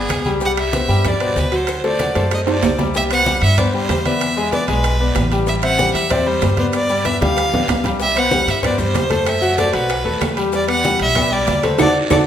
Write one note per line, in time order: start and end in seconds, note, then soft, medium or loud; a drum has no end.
0.00 0.20 B3 medium
0.00 0.25 G#4 medium
0.00 0.20 B4 medium
0.00 0.20 D5 medium
0.09 0.84 C2 medium
0.09 high bongo medium
0.09 low bongo medium
0.09 high conga medium
0.09 high timbale loud
0.09 short guiro medium
0.09 claves medium
0.09 maracas medium
0.25 0.39 G3 medium
0.25 0.39 G4 medium
0.25 0.39 G5 medium
0.25 high conga medium
0.25 short guiro medium
0.25 maracas soft
0.41 0.67 G3 medium
0.41 0.68 G4 medium
0.41 0.68 G5 medium
0.41 high bongo medium
0.41 high conga soft
0.41 long guiro medium
0.41 maracas medium
0.45 0.52 F#5 loud
0.57 1.09 E5 medium
0.57 high conga soft
0.57 high timbale loud
0.57 claves medium
0.57 maracas soft
0.73 0.86 B3 medium
0.73 0.86 B4 medium
0.73 0.86 C5 medium
0.73 high bongo medium
0.73 high conga medium
0.73 high timbale medium
0.73 short guiro medium
0.73 maracas medium
0.88 1.33 G2 medium
0.88 1.15 G3 medium
0.88 1.15 G4 medium
0.88 1.15 G5 medium
0.88 high conga soft
0.88 short guiro medium
0.88 maracas soft
1.05 1.41 D5 medium
1.05 high bongo medium
1.05 high conga soft
1.05 low conga medium
1.05 high timbale medium
1.05 long guiro medium
1.05 claves medium
1.05 maracas medium
1.20 1.46 B2 medium
1.20 1.47 B4 medium
1.20 1.47 C5 medium
1.20 high conga soft
1.20 high timbale medium
1.20 maracas soft
1.36 2.10 D2 medium
1.36 1.57 B4 medium
1.36 high bongo medium
1.36 low bongo medium
1.36 high conga medium
1.36 short guiro medium
1.36 maracas medium
1.52 1.78 F#3 medium
1.52 1.78 F#4 medium
1.52 1.78 F#5 medium
1.52 high conga soft
1.52 high timbale medium
1.52 short guiro medium
1.52 maracas soft
1.56 1.86 C5 medium
1.67 high bongo medium
1.67 high conga soft
1.67 high timbale medium
1.67 long guiro medium
1.67 claves medium
1.67 maracas medium
1.84 1.97 A3 medium
1.84 1.97 A4 medium
1.84 1.97 C5 medium
1.84 2.29 D5 medium
1.84 high bongo medium
1.84 high conga soft
1.84 maracas soft
1.99 2.13 F#3 medium
1.99 2.13 F#4 medium
1.99 2.13 F#5 medium
1.99 high bongo medium
1.99 high conga medium
1.99 high timbale medium
1.99 short guiro medium
1.99 maracas medium
2.15 2.60 F#2 medium
2.15 2.41 A3 medium
2.15 2.41 A4 medium
2.15 2.42 C5 medium
2.15 low bongo medium
2.15 high timbale medium
2.15 short guiro medium
2.15 maracas soft
2.31 2.40 D#5 medium
2.31 low bongo medium
2.31 high conga soft
2.31 high timbale medium
2.31 long guiro medium
2.31 claves medium
2.31 maracas medium
2.46 2.73 A3 medium
2.46 2.73 A4 medium
2.46 2.73 C5 medium
2.46 low bongo medium
2.46 high conga soft
2.46 high timbale medium
2.46 maracas soft
2.51 2.78 D5 medium
2.63 3.37 C2 medium
2.63 high conga medium
2.63 low timbale loud
2.63 short guiro medium
2.63 claves medium
2.63 maracas medium
2.78 2.92 G3 medium
2.78 2.92 G4 medium
2.78 2.92 G5 medium
2.78 low bongo loud
2.78 high conga medium
2.78 low timbale medium
2.78 short guiro medium
2.78 maracas soft
2.94 3.08 G3 medium
2.94 3.08 G4 medium
2.94 3.03 E5 loud
2.94 3.08 G5 medium
2.94 high bongo medium
2.94 high conga soft
2.94 long guiro medium
2.94 maracas medium
3.10 3.24 B3 medium
3.10 3.24 B4 medium
3.10 3.24 C5 medium
3.10 3.41 F#5 loud
3.10 high conga soft
3.10 high timbale loud
3.10 maracas medium
3.26 3.53 G3 medium
3.26 3.53 G4 medium
3.26 3.53 G5 medium
3.26 high bongo medium
3.26 high conga medium
3.26 low timbale medium
3.26 short guiro medium
3.26 maracas medium
3.42 3.86 G2 medium
3.42 3.60 E5 loud
3.42 high timbale medium
3.42 short guiro medium
3.42 maracas soft
3.58 3.71 B3 medium
3.58 3.71 B4 medium
3.58 3.71 C5 medium
3.58 3.74 D5 medium
3.58 high bongo medium
3.58 high conga soft
3.58 low conga medium
3.58 high timbale loud
3.58 long guiro medium
3.58 maracas medium
3.74 4.00 G3 medium
3.74 4.00 G4 medium
3.74 4.07 C5 loud
3.74 4.00 G5 medium
3.74 high conga soft
3.89 4.63 E2 medium
3.89 high bongo medium
3.89 low bongo medium
3.89 high conga medium
3.89 high timbale medium
3.89 low timbale medium
3.89 short guiro medium
3.89 maracas medium
4.05 4.31 B3 medium
4.05 4.31 B4 medium
4.05 4.32 D5 medium
4.05 4.53 E5 medium
4.05 high conga medium
4.05 high timbale medium
4.05 short guiro medium
4.05 maracas soft
4.21 high bongo medium
4.21 high conga soft
4.21 high timbale medium
4.21 long guiro medium
4.21 maracas medium
4.37 4.50 G#3 medium
4.37 4.50 G#4 medium
4.37 4.50 G#5 medium
4.37 high bongo soft
4.37 high conga soft
4.52 4.65 B3 medium
4.52 4.65 B4 medium
4.52 4.66 D5 medium
4.52 4.68 D5 loud
4.52 high bongo medium
4.52 high conga medium
4.52 high timbale medium
4.52 low timbale medium
4.52 short guiro medium
4.52 maracas medium
4.68 5.12 B1 medium
4.68 4.94 G#3 medium
4.68 4.94 G#4 medium
4.68 5.28 B4 loud
4.68 4.94 G#5 medium
4.68 high bongo soft
4.68 high conga soft
4.68 high timbale medium
4.68 short guiro medium
4.68 maracas soft
4.83 high bongo medium
4.83 high timbale medium
4.83 long guiro medium
4.83 maracas medium
5.00 5.26 B3 medium
5.00 5.26 B4 medium
5.00 5.26 D5 medium
5.00 high bongo soft
5.00 high conga soft
5.15 5.89 A1 medium
5.15 high bongo medium
5.15 low bongo medium
5.15 high conga medium
5.15 high timbale medium
5.15 low timbale medium
5.15 short guiro medium
5.15 maracas medium
5.31 5.45 G3 medium
5.31 5.45 G4 medium
5.31 5.45 G5 loud
5.31 high timbale medium
5.31 short guiro medium
5.31 maracas soft
5.47 5.61 G3 medium
5.47 5.61 G4 medium
5.47 5.55 E5 medium
5.47 5.61 G5 medium
5.47 high bongo medium
5.47 long guiro medium
5.47 maracas medium
5.62 5.76 C4 medium
5.62 5.76 C5 medium
5.62 5.76 E5 medium
5.62 5.93 F#5 loud
5.62 high conga soft
5.62 high timbale loud
5.62 maracas medium
5.78 6.04 G3 medium
5.78 6.05 G4 medium
5.78 6.05 G5 medium
5.78 high bongo medium
5.78 high conga medium
5.78 low timbale medium
5.78 short guiro medium
5.78 maracas medium
5.94 6.39 E2 medium
5.94 6.12 E5 medium
5.94 high timbale medium
5.94 short guiro medium
5.94 maracas soft
6.09 6.23 C4 medium
6.09 6.24 C5 medium
6.09 6.29 D5 medium
6.09 6.24 E5 medium
6.09 high bongo medium
6.09 high conga soft
6.09 low conga medium
6.09 high timbale medium
6.09 long guiro medium
6.09 maracas medium
6.26 6.52 G3 medium
6.26 6.53 G4 medium
6.26 6.58 C5 medium
6.26 6.53 G5 medium
6.26 high conga soft
6.41 7.16 G2 medium
6.41 high bongo medium
6.41 low bongo medium
6.41 high conga medium
6.41 high timbale medium
6.41 low timbale medium
6.41 short guiro medium
6.41 maracas medium
6.57 6.84 B3 medium
6.57 6.84 B4 medium
6.57 6.66 C5 medium
6.57 6.84 D5 medium
6.57 high conga medium
6.57 high timbale medium
6.57 short guiro medium
6.57 maracas soft
6.73 7.07 D5 loud
6.73 high bongo medium
6.73 high conga soft
6.73 high timbale medium
6.73 long guiro medium
6.73 maracas medium
6.89 7.03 G3 medium
6.89 7.03 G4 medium
6.89 7.03 G5 loud
6.89 high bongo soft
6.89 high conga soft
6.89 maracas medium
7.05 7.18 B3 medium
7.05 7.18 B4 medium
7.05 7.19 D5 medium
7.05 7.21 E5 loud
7.05 high bongo medium
7.05 high conga medium
7.05 high timbale medium
7.05 low timbale medium
7.05 short guiro medium
7.05 maracas medium
7.21 7.65 D2 medium
7.21 7.47 G3 medium
7.21 7.47 G4 medium
7.21 7.81 F5 loud
7.21 7.47 G5 medium
7.21 high bongo soft
7.21 high conga loud
7.21 high timbale medium
7.21 short guiro medium
7.21 maracas soft
7.37 high bongo medium
7.37 high timbale medium
7.37 long guiro medium
7.37 maracas medium
7.53 7.79 B3 medium
7.53 7.79 B4 medium
7.53 7.79 D5 medium
7.53 high bongo soft
7.53 low conga medium
7.68 8.42 C2 medium
7.68 high bongo medium
7.68 low bongo medium
7.68 low conga medium
7.68 high timbale loud
7.68 low timbale medium
7.68 short guiro medium
7.68 maracas medium
7.84 7.97 G3 medium
7.84 7.97 G4 medium
7.84 7.98 G5 loud
7.84 low conga medium
7.84 high timbale medium
7.84 short guiro medium
7.84 maracas soft
8.00 8.13 G3 medium
8.00 8.13 G4 medium
8.00 8.20 E5 loud
8.00 8.14 G5 medium
8.00 high bongo medium
8.00 high conga soft
8.00 long guiro medium
8.00 maracas medium
8.15 8.29 B3 medium
8.15 8.29 B4 medium
8.15 8.29 C5 medium
8.15 8.51 F#5 loud
8.15 high conga soft
8.15 high timbale loud
8.15 claves medium
8.31 8.57 G3 medium
8.31 8.57 G4 medium
8.31 8.58 G5 medium
8.31 high bongo medium
8.31 high conga medium
8.31 low timbale medium
8.31 short guiro medium
8.31 maracas medium
8.47 8.91 G2 medium
8.47 8.64 E5 medium
8.47 high timbale medium
8.47 short guiro medium
8.47 maracas soft
8.63 8.76 B3 medium
8.63 8.76 B4 medium
8.63 8.76 C5 medium
8.63 8.79 D5 medium
8.63 high bongo medium
8.63 high conga soft
8.63 low conga medium
8.63 high timbale loud
8.63 long guiro medium
8.63 claves medium
8.63 maracas medium
8.78 9.04 G3 medium
8.78 9.05 G4 medium
8.78 9.30 C5 medium
8.78 9.05 G5 medium
8.78 high conga soft
8.78 low conga medium
8.78 maracas medium
8.94 9.68 F#2 medium
8.94 high bongo medium
8.94 low bongo medium
8.94 high conga medium
8.94 high timbale medium
8.94 low timbale medium
8.94 short guiro medium
8.94 maracas medium
9.10 9.36 A3 medium
9.10 9.36 A4 medium
9.10 9.36 C5 medium
9.10 high conga medium
9.10 high timbale medium
9.10 short guiro medium
9.10 maracas soft
9.26 9.59 E5 loud
9.26 high bongo medium
9.26 high conga soft
9.26 high timbale medium
9.26 long guiro medium
9.26 claves medium
9.26 maracas medium
9.42 9.55 F#3 medium
9.42 9.55 F#4 medium
9.42 9.55 F#5 medium
9.42 high bongo soft
9.42 high conga soft
9.42 maracas medium
9.58 9.71 A3 medium
9.58 9.71 A4 medium
9.58 9.71 C5 medium
9.58 9.73 D5 medium
9.58 high bongo medium
9.58 high conga medium
9.58 high timbale medium
9.58 low timbale medium
9.58 short guiro medium
9.58 maracas medium
9.73 10.03 B1 medium
9.73 9.99 F#3 medium
9.73 9.99 F#4 medium
9.73 10.34 B4 medium
9.73 10.00 F#5 loud
9.73 high bongo soft
9.73 high conga soft
9.73 high timbale medium
9.73 short guiro medium
9.73 maracas soft
9.89 high bongo medium
9.89 high conga soft
9.89 high timbale medium
9.89 long guiro medium
9.89 claves medium
9.89 maracas medium
10.05 10.20 D#2 medium
10.05 10.31 A3 medium
10.05 10.31 A4 medium
10.05 10.31 B4 medium
10.05 high bongo soft
10.05 high conga soft
10.21 10.94 E2 medium
10.21 high bongo medium
10.21 low bongo medium
10.21 high conga medium
10.21 high timbale medium
10.21 low timbale medium
10.21 short guiro medium
10.21 claves medium
10.21 maracas medium
10.37 10.50 G3 loud
10.37 10.50 G4 medium
10.37 10.50 G5 medium
10.37 high timbale medium
10.37 short guiro medium
10.37 maracas soft
10.52 10.66 G3 medium
10.52 10.66 G4 medium
10.52 10.69 D5 loud
10.52 10.66 G5 medium
10.52 high bongo medium
10.52 high conga soft
10.52 long guiro medium
10.52 maracas medium
10.68 10.81 B3 medium
10.68 10.81 B4 medium
10.68 10.81 D5 medium
10.68 10.99 F#5 loud
10.68 high conga soft
10.68 high timbale medium
10.68 claves medium
10.84 11.10 G3 medium
10.84 11.10 G4 medium
10.84 11.11 G5 medium
10.84 high bongo medium
10.84 high conga loud
10.84 low timbale medium
10.84 short guiro medium
10.84 maracas medium
11.00 11.44 B1 medium
11.00 11.34 E5 loud
11.00 high timbale medium
11.00 short guiro medium
11.00 maracas soft
11.15 11.29 B3 medium
11.15 11.29 B4 medium
11.15 11.29 D5 medium
11.15 high bongo medium
11.15 high conga soft
11.15 low conga medium
11.15 high timbale medium
11.15 long guiro medium
11.15 claves medium
11.15 maracas medium
11.32 11.57 G3 medium
11.32 11.58 G4 medium
11.32 11.66 D5 loud
11.32 11.58 G5 medium
11.32 high conga soft
11.47 11.77 D2 medium
11.47 high bongo medium
11.47 low bongo medium
11.47 high conga medium
11.47 high timbale medium
11.47 low timbale medium
11.47 short guiro medium
11.47 maracas medium
11.63 11.76 A3 medium
11.63 11.76 A4 medium
11.63 11.79 B4 medium
11.63 11.76 C5 medium
11.63 high conga medium
11.63 high timbale medium
11.63 short guiro medium
11.63 maracas soft
11.78 11.91 D2 medium
11.78 11.89 D4 loud
11.78 11.89 F#4 loud
11.78 11.89 A4 loud
11.78 11.90 D5 loud
11.78 low bongo medium
11.78 high conga medium
11.78 high timbale loud
11.78 long guiro loud
11.78 claves loud
11.78 maracas loud
12.10 12.22 D2 medium
12.10 12.21 D4 loud
12.10 12.21 F#4 medium
12.10 12.21 A4 loud
12.10 12.21 D5 medium
12.10 low bongo loud
12.10 high conga loud
12.10 high timbale loud
12.10 long guiro medium
12.10 claves loud
12.10 maracas loud